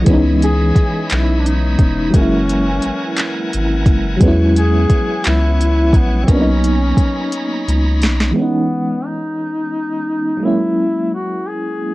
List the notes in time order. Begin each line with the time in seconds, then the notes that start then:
Already playing: C#5
0.02 E3 G#3
0.06 C#2 E3 B3 C#4 D#5 B5, kick, closed hi-hat
0.13 D#4
0.42 G#4, closed hi-hat
0.76 B1, kick, closed hi-hat
1.10 B1 E4, clap, closed hi-hat
1.41 D4
1.46 D#4, closed hi-hat
1.79 E1, kick, closed hi-hat
2.11 F#3 G#3 A#4 F#5 G#5, kick, closed hi-hat
2.15 F#1 A#3 C#4
2.21 E4
2.49 closed hi-hat
2.82 G#1, closed hi-hat
3.17 clap, closed hi-hat
3.53 G#1, closed hi-hat
3.86 F#1, kick, closed hi-hat
4.17 F#3 G#3, kick, closed hi-hat
4.22 E2 B3 C#4 C#5
4.28 E4
4.56 G#4, closed hi-hat
4.90 C#2, kick, closed hi-hat
5.24 C#2 E4, clap, closed hi-hat
5.61 closed hi-hat
5.93 A#1 B3, kick, closed hi-hat
6.23 F#3 A#3 C4
6.27 B1 B3 C#4 D#4 A#5 B5, kick, closed hi-hat
6.32 C#4 D4
6.41 D#4
6.64 closed hi-hat
6.97 C#2, kick, closed hi-hat
7.32 closed hi-hat
7.68 C#2, closed hi-hat
8.02 B1, snare, closed hi-hat
8.20 snare
8.31 E3 G#3
8.36 B3 C#4
8.42 D#4
9.06 D#4
10.37 F#3 G#3
10.43 A#3 C#4 E4
10.48 E4
11.14 F#4
11.48 G#4